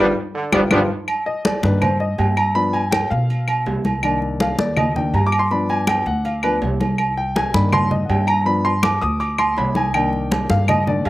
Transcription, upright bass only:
0, 0, Header, 1, 2, 480
1, 0, Start_track
1, 0, Tempo, 369458
1, 1401, Time_signature, 4, 2, 24, 8
1, 14413, End_track
2, 0, Start_track
2, 0, Title_t, "Upright bass"
2, 0, Program_c, 0, 32
2, 0, Note_on_c, 0, 31, 92
2, 133, Note_off_c, 0, 31, 0
2, 678, Note_on_c, 0, 31, 92
2, 858, Note_off_c, 0, 31, 0
2, 916, Note_on_c, 0, 31, 101
2, 1097, Note_off_c, 0, 31, 0
2, 2124, Note_on_c, 0, 43, 101
2, 2792, Note_off_c, 0, 43, 0
2, 2844, Note_on_c, 0, 43, 88
2, 3966, Note_off_c, 0, 43, 0
2, 4043, Note_on_c, 0, 47, 100
2, 4711, Note_off_c, 0, 47, 0
2, 4758, Note_on_c, 0, 36, 91
2, 5882, Note_off_c, 0, 36, 0
2, 5958, Note_on_c, 0, 39, 94
2, 6627, Note_off_c, 0, 39, 0
2, 6671, Note_on_c, 0, 43, 85
2, 7798, Note_off_c, 0, 43, 0
2, 7871, Note_on_c, 0, 38, 100
2, 8543, Note_off_c, 0, 38, 0
2, 8599, Note_on_c, 0, 36, 92
2, 9722, Note_off_c, 0, 36, 0
2, 9796, Note_on_c, 0, 43, 97
2, 10466, Note_off_c, 0, 43, 0
2, 10516, Note_on_c, 0, 43, 91
2, 11641, Note_off_c, 0, 43, 0
2, 11720, Note_on_c, 0, 38, 107
2, 12390, Note_off_c, 0, 38, 0
2, 12444, Note_on_c, 0, 36, 94
2, 13568, Note_off_c, 0, 36, 0
2, 13640, Note_on_c, 0, 43, 98
2, 14312, Note_off_c, 0, 43, 0
2, 14361, Note_on_c, 0, 43, 90
2, 14413, Note_off_c, 0, 43, 0
2, 14413, End_track
0, 0, End_of_file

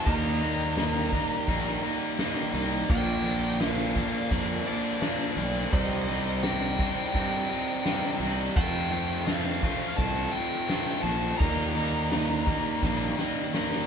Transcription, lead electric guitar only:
0, 0, Header, 1, 2, 480
1, 0, Start_track
1, 0, Tempo, 709220
1, 43, Time_signature, 4, 2, 24, 8
1, 9385, End_track
2, 0, Start_track
2, 0, Title_t, "Lead electric guitar"
2, 0, Program_c, 0, 29
2, 34, Note_on_c, 0, 82, 105
2, 1688, Note_off_c, 0, 82, 0
2, 1970, Note_on_c, 0, 79, 114
2, 2443, Note_off_c, 0, 79, 0
2, 2446, Note_on_c, 0, 77, 105
2, 2921, Note_on_c, 0, 74, 93
2, 2935, Note_off_c, 0, 77, 0
2, 3152, Note_off_c, 0, 74, 0
2, 3160, Note_on_c, 0, 74, 87
2, 3381, Note_off_c, 0, 74, 0
2, 3401, Note_on_c, 0, 74, 86
2, 3874, Note_off_c, 0, 74, 0
2, 3877, Note_on_c, 0, 75, 105
2, 4352, Note_on_c, 0, 79, 98
2, 4370, Note_off_c, 0, 75, 0
2, 5526, Note_off_c, 0, 79, 0
2, 5795, Note_on_c, 0, 79, 107
2, 6247, Note_off_c, 0, 79, 0
2, 6270, Note_on_c, 0, 77, 99
2, 6745, Note_on_c, 0, 81, 114
2, 6767, Note_off_c, 0, 77, 0
2, 6982, Note_on_c, 0, 79, 102
2, 6997, Note_off_c, 0, 81, 0
2, 7462, Note_on_c, 0, 81, 102
2, 7484, Note_off_c, 0, 79, 0
2, 7696, Note_off_c, 0, 81, 0
2, 7699, Note_on_c, 0, 82, 109
2, 9370, Note_off_c, 0, 82, 0
2, 9385, End_track
0, 0, End_of_file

